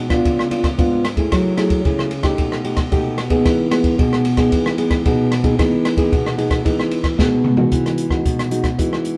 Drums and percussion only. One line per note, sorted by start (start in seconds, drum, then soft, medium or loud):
0.10 kick medium
0.10 cross-stick medium
0.10 ride medium
0.25 kick medium
0.25 ride medium
0.39 cross-stick medium
0.51 ride medium
0.64 kick medium
0.64 cross-stick medium
0.64 ride soft
0.79 kick medium
0.79 ride soft
1.05 cross-stick medium
1.05 ride medium
1.17 kick medium
1.17 ride soft
1.32 kick medium
1.32 cross-stick medium
1.32 ride medium
1.58 cross-stick medium
1.58 ride medium
1.70 kick medium
1.70 ride soft
1.85 kick medium
1.85 ride soft
1.99 cross-stick medium
2.11 ride soft
2.23 kick medium
2.23 cross-stick medium
2.23 ride soft
2.38 kick medium
2.38 ride soft
2.52 cross-stick medium
2.65 ride soft
2.77 kick medium
2.77 cross-stick medium
2.77 ride soft
2.92 kick medium
2.92 ride soft
3.18 cross-stick medium
3.18 ride soft
3.30 kick medium
3.30 ride soft
3.46 kick medium
3.46 cross-stick medium
3.46 ride medium
3.71 cross-stick medium
3.71 ride medium
3.84 kick medium
3.84 ride soft
3.99 kick medium
3.99 ride soft
4.13 cross-stick medium
4.25 ride medium
4.37 kick medium
4.37 cross-stick medium
4.37 ride medium
4.52 kick medium
4.52 ride medium
4.66 cross-stick medium
4.78 ride soft
4.91 kick medium
4.91 cross-stick medium
4.91 ride soft
5.05 kick medium
5.05 ride medium
5.32 cross-stick medium
5.32 ride medium
5.44 kick medium
5.44 ride soft
5.59 kick medium
5.59 cross-stick medium
5.59 ride medium
5.85 cross-stick medium
5.85 ride medium
5.97 kick medium
5.97 ride soft
6.12 kick medium
6.12 ride soft
6.26 cross-stick medium
6.38 ride soft
6.51 kick medium
6.51 cross-stick medium
6.51 ride soft
6.66 kick medium
6.66 ride medium
6.79 cross-stick medium
6.91 ride soft
7.04 kick medium
7.04 cross-stick medium
7.04 ride soft
7.19 kick medium
7.19 snare soft
7.44 mid tom medium
7.57 floor tom medium
7.72 kick medium
7.72 closed hi-hat medium
7.86 cross-stick medium
7.86 closed hi-hat soft
7.98 closed hi-hat medium
8.10 kick medium
8.10 cross-stick medium
8.25 kick medium
8.25 closed hi-hat medium
8.39 cross-stick medium
8.39 closed hi-hat soft
8.51 closed hi-hat soft
8.64 kick medium
8.64 cross-stick medium
8.64 closed hi-hat soft
8.79 kick medium
8.79 closed hi-hat medium
8.93 cross-stick medium
9.05 closed hi-hat soft